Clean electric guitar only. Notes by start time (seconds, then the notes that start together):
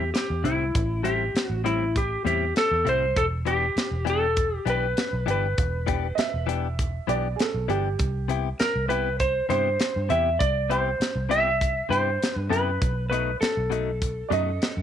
0.44 A2 G3 C4 E4
1.03 A2 G3 C4 E4
1.64 A2 G3 C4 E4
2.25 A2 G3 C4 E4
2.85 A2 G3 C4 E4
3.45 E3 B3 D4 G4
4.05 E3 B3 D4 G4
4.66 E3 B3 D4 G4
5.26 E3 B3 D4 G4
5.87 E3 B3 D4 G4
6.47 E3 B3 D4 G4
7.07 E3 B3 D4 G4
7.68 E3 B3 D4 G4
8.28 C3 B3 E4 G4
8.88 C3 B3 E4 G4
9.49 C3 B3 E4 G4
10.09 C3 B3 E4 G4
10.70 C3 B3 E4 G4
11.29 C3 B3 E4 G4
11.89 C3 B3 E4 G4
12.50 C3 B3 E4 G4
13.11 B2 F#3 A3 D#4
13.70 B2 F#3 A3 D#4
14.30 B2 F#3 A3 D#4